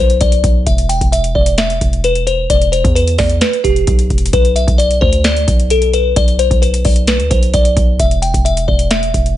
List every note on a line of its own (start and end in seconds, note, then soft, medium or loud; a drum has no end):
0.00 0.20 B1 loud
0.00 0.17 C5 medium
0.10 closed hi-hat medium
0.21 0.43 B1 loud
0.21 0.64 D5 medium
0.21 kick loud
0.21 closed hi-hat medium
0.32 closed hi-hat medium
0.44 0.66 B1 loud
0.44 kick loud
0.44 closed hi-hat medium
0.67 1.00 E1 loud
0.67 0.86 E5 medium
0.67 kick loud
0.67 closed hi-hat medium
0.78 closed hi-hat medium
0.89 1.09 G5 medium
0.89 closed hi-hat medium
1.01 1.34 E1 loud
1.01 kick loud
1.01 closed hi-hat medium
1.12 1.32 E5 medium
1.12 closed hi-hat medium
1.24 closed hi-hat medium
1.35 1.79 E1 loud
1.35 1.55 D5 medium
1.35 kick loud
1.46 closed hi-hat medium
1.58 2.01 E5 loud
1.58 snare loud
1.58 closed hi-hat medium
1.70 closed hi-hat medium
1.81 2.47 E1 loud
1.81 kick medium
1.81 closed hi-hat medium
1.93 closed hi-hat medium
2.04 2.24 B4 medium
2.04 closed hi-hat medium
2.15 closed hi-hat medium
2.27 2.46 C5 medium
2.27 closed hi-hat medium
2.50 2.83 E1 loud
2.50 2.69 D5 loud
2.50 kick loud
2.50 closed hi-hat medium
2.62 closed hi-hat medium
2.72 2.92 C5 medium
2.72 closed hi-hat medium
2.84 3.17 E2 loud
2.84 kick loud
2.84 closed hi-hat medium
2.95 3.15 B4 medium
2.95 closed hi-hat medium
3.07 closed hi-hat medium
3.18 3.41 E2 loud
3.18 3.38 D5 medium
3.18 kick loud
3.18 snare medium
3.18 open hi-hat medium
3.30 closed hi-hat medium
3.41 3.61 B4 medium
3.41 snare loud
3.41 closed hi-hat medium
3.53 closed hi-hat medium
3.64 3.86 E1 loud
3.64 4.29 G4 medium
3.64 kick medium
3.64 closed hi-hat medium
3.76 closed hi-hat medium
3.87 4.09 B1 loud
3.87 kick loud
3.87 closed hi-hat medium
3.99 closed hi-hat medium
4.10 4.32 E1 loud
4.10 kick loud
4.10 closed hi-hat soft
4.18 closed hi-hat medium
4.26 closed hi-hat medium
4.33 4.66 B1 loud
4.33 4.53 B4 medium
4.33 kick loud
4.33 closed hi-hat medium
4.45 closed hi-hat medium
4.56 4.75 E5 medium
4.56 closed hi-hat medium
4.67 5.00 B1 loud
4.67 kick loud
4.67 closed hi-hat medium
4.78 4.98 D5 medium
4.78 closed hi-hat medium
4.91 closed hi-hat medium
5.01 5.46 D2 loud
5.01 5.21 C5 medium
5.01 kick loud
5.13 closed hi-hat medium
5.24 5.68 D5 loud
5.24 snare loud
5.24 closed hi-hat medium
5.37 closed hi-hat medium
5.48 6.14 B1 loud
5.48 kick medium
5.48 closed hi-hat medium
5.60 closed hi-hat medium
5.70 5.90 A4 medium
5.70 closed hi-hat medium
5.82 closed hi-hat medium
5.93 6.13 B4 medium
5.93 closed hi-hat medium
6.16 6.49 B1 loud
6.16 6.36 D5 loud
6.16 kick loud
6.16 closed hi-hat medium
6.28 closed hi-hat medium
6.39 6.58 C5 medium
6.39 closed hi-hat medium
6.51 6.84 B1 loud
6.51 kick loud
6.51 closed hi-hat medium
6.62 6.81 B4 medium
6.62 closed hi-hat medium
6.74 closed hi-hat medium
6.85 7.21 B1 loud
6.85 7.04 D5 medium
6.85 kick loud
6.85 open hi-hat medium
6.96 closed hi-hat medium
7.07 7.27 B4 medium
7.07 snare loud
7.07 closed hi-hat medium
7.19 7.30 D2 loud
7.19 closed hi-hat medium
7.31 7.53 B1 loud
7.31 7.50 C5 medium
7.31 kick medium
7.31 closed hi-hat medium
7.43 closed hi-hat medium
7.54 7.76 B1 loud
7.54 7.97 D5 loud
7.54 kick loud
7.54 closed hi-hat medium
7.65 closed hi-hat medium
7.77 7.99 B1 loud
7.77 kick loud
7.77 closed hi-hat medium
7.99 8.32 E1 loud
7.99 8.19 E5 medium
7.99 kick loud
7.99 closed hi-hat medium
8.11 closed hi-hat medium
8.22 8.42 G5 medium
8.22 closed hi-hat medium
8.34 8.67 E1 loud
8.34 kick loud
8.34 closed hi-hat medium
8.45 8.65 E5 medium
8.45 closed hi-hat medium
8.57 closed hi-hat medium
8.68 9.12 E1 loud
8.68 8.87 D5 medium
8.68 kick medium
8.79 closed hi-hat medium
8.91 9.34 E5 loud
8.91 snare loud
8.91 closed hi-hat medium
9.03 closed hi-hat medium
9.14 9.37 E1 loud
9.14 kick medium
9.14 closed hi-hat medium
9.26 closed hi-hat medium